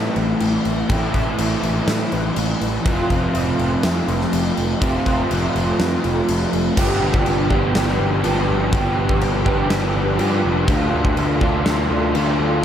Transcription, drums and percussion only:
0.16 crash medium
0.40 crash medium
0.65 crash medium
0.89 kick loud
0.89 crash medium
1.14 kick medium
1.14 crash medium
1.38 crash medium
1.63 crash medium
1.87 snare loud
1.87 crash medium
2.12 crash medium
2.36 crash medium
2.61 crash medium
2.85 kick loud
2.85 crash medium
3.10 kick medium
3.10 crash medium
3.35 crash medium
3.59 crash medium
3.83 snare loud
3.83 crash medium
4.08 crash medium
4.21 snare soft
4.33 crash medium
4.57 crash medium
4.82 kick loud
4.82 crash medium
5.06 kick medium
5.06 crash medium
5.31 crash medium
5.56 crash medium
5.79 snare loud
5.79 crash medium
6.04 crash medium
6.28 crash medium
6.53 crash medium
6.77 kick loud
6.77 crash loud
6.77 crash medium
7.14 kick medium
7.26 crash medium
7.51 kick medium
7.75 snare loud
7.75 crash medium
7.88 snare soft
8.24 crash medium
8.73 kick loud
8.73 crash medium
9.09 kick medium
9.21 crash medium
9.46 kick medium
9.70 snare loud
9.70 crash medium
10.19 crash medium
10.68 kick loud
10.68 crash medium
11.05 kick loud
11.17 crash medium
11.41 kick medium
11.66 snare loud
11.66 crash medium
12.15 crash medium

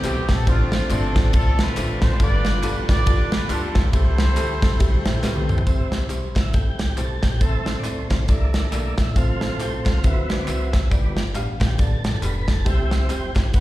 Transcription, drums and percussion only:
0.03 clap loud
0.03 ride medium
0.03 tambourine loud
0.29 kick medium
0.29 snare loud
0.29 ride medium
0.29 tambourine medium
0.47 kick loud
0.47 ride medium
0.47 tambourine medium
0.72 snare loud
0.72 ride medium
0.72 tambourine medium
0.90 clap medium
0.90 ride medium
0.90 tambourine medium
1.16 kick loud
1.16 snare loud
1.16 ride medium
1.16 tambourine medium
1.33 kick loud
1.33 ride medium
1.33 tambourine medium
1.58 snare loud
1.58 ride medium
1.58 tambourine medium
1.77 clap loud
1.77 ride medium
1.77 tambourine loud
2.02 kick medium
2.02 snare loud
2.02 ride medium
2.02 tambourine medium
2.20 kick loud
2.20 ride medium
2.20 tambourine medium
2.45 snare loud
2.45 ride medium
2.45 tambourine medium
2.63 clap medium
2.63 ride medium
2.63 tambourine medium
2.89 kick loud
2.89 snare loud
2.89 ride medium
2.89 tambourine medium
3.06 kick loud
3.06 ride medium
3.06 tambourine medium
3.32 snare loud
3.32 ride medium
3.32 tambourine medium
3.50 clap loud
3.50 ride medium
3.50 tambourine loud
3.75 kick medium
3.75 snare loud
3.75 ride medium
3.75 tambourine medium
3.93 kick loud
3.93 ride medium
3.93 tambourine medium
4.18 snare loud
4.18 ride medium
4.18 tambourine medium
4.37 clap medium
4.37 ride medium
4.37 tambourine medium
4.62 kick loud
4.62 snare loud
4.62 ride medium
4.62 tambourine medium
4.80 kick loud
4.80 ride medium
4.80 tambourine medium
5.05 snare loud
5.05 ride medium
5.05 tambourine medium
5.23 snare medium
5.23 clap loud
5.23 tambourine loud
5.36 high tom medium
5.49 mid tom loud
5.49 tambourine medium
5.58 floor tom loud
5.67 kick loud
5.67 closed hi-hat medium
5.67 tambourine medium
5.92 snare medium
5.92 closed hi-hat medium
5.92 tambourine soft
6.10 clap medium
6.10 closed hi-hat medium
6.10 tambourine medium
6.36 kick medium
6.36 snare loud
6.36 clap medium
6.36 closed hi-hat medium
6.36 tambourine soft
6.53 kick loud
6.53 closed hi-hat medium
6.53 tambourine medium
6.79 snare loud
6.79 closed hi-hat medium
6.79 tambourine medium
6.97 clap medium
6.97 closed hi-hat medium
6.97 tambourine medium
7.23 kick medium
7.23 snare loud
7.23 closed hi-hat medium
7.23 tambourine medium
7.41 kick loud
7.41 closed hi-hat medium
7.41 tambourine medium
7.66 snare medium
7.66 closed hi-hat medium
7.66 tambourine soft
7.84 clap medium
7.84 closed hi-hat medium
7.84 tambourine medium
8.11 kick medium
8.11 snare loud
8.11 clap medium
8.11 closed hi-hat medium
8.11 tambourine soft
8.28 kick loud
8.28 closed hi-hat medium
8.28 tambourine medium
8.54 snare loud
8.54 closed hi-hat medium
8.54 tambourine medium
8.72 clap loud
8.72 closed hi-hat medium
8.72 tambourine medium
8.98 kick medium
8.98 snare loud
8.98 closed hi-hat medium
8.98 tambourine soft
9.16 kick loud
9.16 closed hi-hat medium
9.16 tambourine medium
9.41 snare medium
9.41 closed hi-hat medium
9.41 tambourine medium
9.60 clap medium
9.60 closed hi-hat medium
9.60 tambourine medium
9.86 kick medium
9.86 snare loud
9.86 clap medium
9.86 closed hi-hat medium
9.86 tambourine medium
10.04 kick loud
10.04 closed hi-hat medium
10.04 tambourine medium
10.30 snare loud
10.30 closed hi-hat medium
10.30 tambourine medium
10.48 clap medium
10.48 closed hi-hat medium
10.48 tambourine medium
10.73 kick medium
10.73 snare loud
10.73 closed hi-hat medium
10.73 tambourine medium
10.91 kick loud
10.91 closed hi-hat medium
10.91 tambourine medium
11.17 snare medium
11.17 closed hi-hat medium
11.17 tambourine medium
11.35 clap medium
11.35 closed hi-hat medium
11.35 tambourine medium
11.61 kick medium
11.61 snare loud
11.61 clap medium
11.61 closed hi-hat medium
11.61 tambourine soft
11.79 kick loud
11.79 closed hi-hat medium
11.79 tambourine medium
12.04 snare loud
12.04 closed hi-hat medium
12.04 tambourine medium
12.22 clap loud
12.22 closed hi-hat medium
12.22 tambourine medium
12.48 kick medium
12.48 snare loud
12.48 closed hi-hat medium
12.48 tambourine soft
12.66 kick loud
12.66 closed hi-hat medium
12.66 tambourine medium
12.91 snare medium
12.91 closed hi-hat medium
12.91 tambourine medium
13.10 clap medium
13.10 closed hi-hat medium
13.10 tambourine medium
13.35 kick medium
13.35 snare loud
13.35 clap medium
13.35 closed hi-hat medium
13.35 tambourine medium
13.53 kick loud
13.53 closed hi-hat medium
13.53 tambourine medium

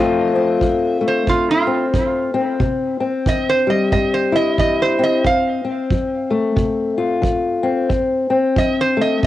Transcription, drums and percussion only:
0.61 kick medium
1.27 kick medium
1.94 kick medium
2.60 kick medium
3.26 kick medium
3.92 kick medium
4.58 kick medium
5.24 kick medium
5.90 kick medium
6.57 kick medium
7.23 kick medium
7.90 kick medium
8.56 kick medium
9.23 kick medium

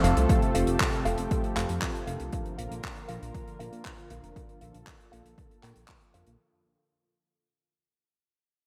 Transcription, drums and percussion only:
0.04 closed hi-hat medium
0.17 closed hi-hat medium
0.29 kick loud
0.29 closed hi-hat medium
0.42 closed hi-hat soft
0.55 closed hi-hat medium
0.67 closed hi-hat medium
0.80 kick medium
0.80 clap loud
0.80 closed hi-hat medium
0.93 closed hi-hat soft
1.05 closed hi-hat medium
1.18 closed hi-hat medium
1.31 kick loud
1.31 closed hi-hat medium
1.44 closed hi-hat soft
1.56 clap medium
1.56 closed hi-hat medium
1.69 closed hi-hat medium
1.82 kick medium
1.82 clap loud
1.82 closed hi-hat medium
1.95 closed hi-hat soft
2.07 closed hi-hat medium
2.20 closed hi-hat medium
2.32 kick loud
2.32 closed hi-hat medium
2.46 closed hi-hat soft
2.59 closed hi-hat loud
2.72 closed hi-hat medium
2.83 kick medium
2.83 clap loud
2.83 closed hi-hat medium
2.96 closed hi-hat soft
3.09 closed hi-hat medium
3.23 closed hi-hat medium
3.34 kick loud
3.34 closed hi-hat medium
3.48 closed hi-hat soft
3.60 closed hi-hat medium
3.73 closed hi-hat medium
3.85 kick medium
3.85 clap loud
3.85 closed hi-hat medium
3.98 closed hi-hat soft
4.10 closed hi-hat loud
4.24 closed hi-hat medium
4.36 kick loud
4.36 closed hi-hat medium
4.49 closed hi-hat soft
4.61 closed hi-hat medium
4.74 closed hi-hat medium
4.87 kick medium
4.87 clap loud
4.87 closed hi-hat medium
5.00 closed hi-hat soft
5.13 closed hi-hat medium
5.26 closed hi-hat medium
5.38 kick loud
5.38 closed hi-hat medium
5.51 closed hi-hat soft
5.63 clap soft
5.63 closed hi-hat loud
5.76 closed hi-hat medium
5.88 kick medium
5.88 clap medium
5.88 closed hi-hat medium
6.01 closed hi-hat soft
6.14 closed hi-hat medium
6.27 closed hi-hat medium

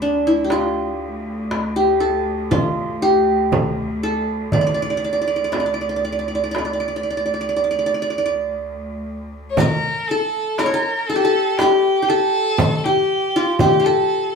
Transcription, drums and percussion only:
0.50 darbuka tek medium
0.50 frame drum medium
1.51 darbuka tek medium
1.51 frame drum medium
2.01 darbuka ka soft
2.51 frame drum medium
2.51 darbuka dum medium
3.52 darbuka dum medium
3.52 frame drum medium
4.02 darbuka ka soft
4.52 darbuka dum medium
4.52 frame drum medium
5.53 darbuka tek medium
5.53 frame drum medium
6.04 darbuka ka soft
6.55 darbuka tek medium
6.55 frame drum medium
9.57 riq medium
9.57 frame drum medium
9.57 darbuka dum medium
10.09 riq soft
10.58 riq soft
10.58 darbuka tek medium
10.58 frame drum medium
11.09 riq soft
11.09 darbuka ka soft
11.59 riq medium
11.59 darbuka tek medium
11.59 frame drum medium
12.09 darbuka ka soft
12.58 riq medium
12.58 frame drum loud
12.58 darbuka dum medium
13.59 riq medium
13.59 frame drum medium
13.59 darbuka dum medium

